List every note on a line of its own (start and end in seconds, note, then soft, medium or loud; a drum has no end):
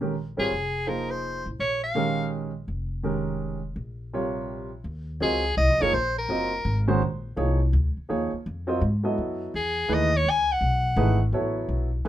0.00 0.34 A#1 medium
0.00 0.13 D#3 soft
0.00 0.13 G#3 soft
0.00 0.13 C#4 soft
0.00 0.13 G4 soft
0.00 0.13 A#4 medium
0.37 0.50 G#1 medium
0.37 0.49 G3 medium
0.37 0.49 C4 soft
0.37 0.50 F4 soft
0.37 0.90 G#4 medium
0.37 0.50 A#4 medium
0.37 0.50 C#5 medium
0.51 1.42 F1 medium
0.87 1.41 F3 soft
0.87 1.41 A#3 soft
0.87 1.41 D#4 medium
0.87 1.42 G#4 soft
0.87 1.12 A#4 medium
0.87 1.42 C5 medium
1.11 1.47 C5 medium
1.46 1.58 A1 medium
1.59 2.64 A#1 medium
1.59 1.81 C#5 medium
1.83 2.29 F5 medium
1.95 2.50 D#3 medium
1.95 2.50 G#3 medium
1.95 2.50 C#4 medium
1.95 2.50 G4 medium
1.95 2.50 A#4 medium
2.68 3.72 F1 medium
3.03 3.58 D#3 medium
3.03 3.59 G#3 soft
3.03 3.59 C#4 soft
3.03 3.59 G4 soft
3.03 3.59 A#4 medium
3.76 4.81 A#1 medium
4.14 4.68 C3 medium
4.14 4.68 G3 medium
4.14 4.68 F4 medium
4.14 4.68 A#4 medium
4.14 4.68 C#5 medium
4.84 5.20 D#2 medium
5.20 5.56 C#2 medium
5.20 5.42 F#3 medium
5.20 5.42 C4 medium
5.20 5.42 F4 medium
5.20 5.55 G#4 medium
5.20 5.42 A#4 medium
5.20 5.42 D#5 medium
5.57 5.69 C2 medium
5.57 5.83 D#5 medium
5.69 5.80 A#1 soft
5.80 5.92 F#1 medium
5.80 5.92 F3 medium
5.80 5.92 A#3 medium
5.80 5.92 D#4 medium
5.80 5.93 G#4 medium
5.80 5.93 A#4 medium
5.80 5.96 C#5 medium
5.92 6.28 A#1 medium
5.92 6.17 C5 medium
6.18 6.85 A#4 medium
6.29 6.64 F#1 medium
6.29 6.50 F#3 medium
6.29 6.50 C4 medium
6.29 6.50 F4 soft
6.29 6.50 A#4 medium
6.29 6.50 D#5 medium
6.65 7.00 G#1 medium
6.88 7.00 D#3 medium
6.88 7.00 G#3 medium
6.88 7.00 C#4 medium
6.88 7.00 F#4 medium
6.88 7.00 C5 medium
7.02 7.36 A#1 medium
7.36 7.72 C2 medium
7.36 7.58 F3 medium
7.36 7.58 A#3 medium
7.36 7.58 D#4 medium
7.36 7.58 G#4 medium
7.36 7.58 C#5 medium
7.73 7.95 D2 medium
7.97 muted upright bass stroke soft
8.09 8.31 D#2 medium
8.09 8.30 F3 medium
8.09 8.30 A#3 medium
8.09 8.30 D#4 medium
8.09 8.30 G#4 medium
8.09 8.30 C#5 medium
8.33 muted upright bass stroke soft
8.46 8.81 F2 medium
8.67 8.80 F#3 medium
8.67 8.80 C4 medium
8.67 8.80 F4 medium
8.67 8.80 A#4 medium
8.67 8.80 D#5 medium
8.81 9.16 G#2 medium
9.04 9.51 F#3 medium
9.04 9.51 B3 medium
9.04 9.51 E4 medium
9.04 9.51 A4 medium
9.04 9.51 D#5 medium
9.18 9.53 F#2 medium
9.54 9.89 E2 medium
9.54 9.95 G#4 medium
9.88 10.24 D#2 medium
9.88 10.10 E3 medium
9.88 10.10 A3 medium
9.88 10.10 D#4 medium
9.88 10.10 G#4 medium
9.88 10.10 B4 medium
9.94 10.18 D#5 medium
10.16 10.31 C#5 loud
10.25 10.60 C#2 medium
10.30 10.54 G#5 loud
10.52 11.22 F#5 medium
10.61 10.96 B1 medium
10.96 11.32 G#1 loud
10.96 11.18 E3 medium
10.96 11.18 A3 medium
10.96 11.18 D#4 medium
10.96 11.18 G#4 medium
10.96 11.18 B4 medium
11.32 11.68 A1 medium
11.32 11.87 F#3 medium
11.32 11.88 B3 medium
11.32 11.88 E4 medium
11.32 11.88 A4 medium
11.32 11.88 C#5 medium
11.69 12.04 B1 medium
12.05 12.08 C#2 medium
12.05 12.08 E3 medium
12.05 12.08 A3 medium
12.05 12.08 D#4 medium